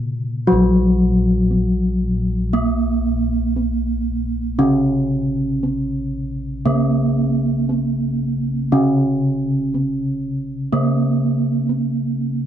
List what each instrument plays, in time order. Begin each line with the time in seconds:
Already playing: kettle gongs A#2, bronze metallophone C#3
0.47 bronze metallophone F#3, kettle gongs F#4
0.52 kettle gongs A#1
1.51 kettle gongs B3
2.53 bronze metallophone A#3
3.56 kettle gongs B3
4.59 bronze metallophone C#3, kettle gongs C#4
5.63 kettle gongs B3
6.66 kettle gongs C#3, bronze metallophone A#3
7.69 kettle gongs B3
8.72 bronze metallophone C#3, kettle gongs C#4
9.74 kettle gongs B3
10.72 kettle gongs C#3, bronze metallophone A#3
11.69 kettle gongs B3